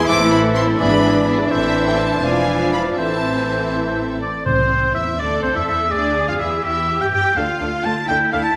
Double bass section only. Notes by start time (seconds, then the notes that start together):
0.08 A1
0.79 G#1
1.50 A1
2.23 E1
2.97 A1
4.47 C2
4.95 E2
5.19 D2
5.43 C2
5.55 E2
5.68 E2
5.92 D2
6.28 F2
6.40 E2
6.64 E2
7.00 G2
7.12 G2
7.36 D2
7.61 D2
7.83 D2
8.08 D2
8.32 D2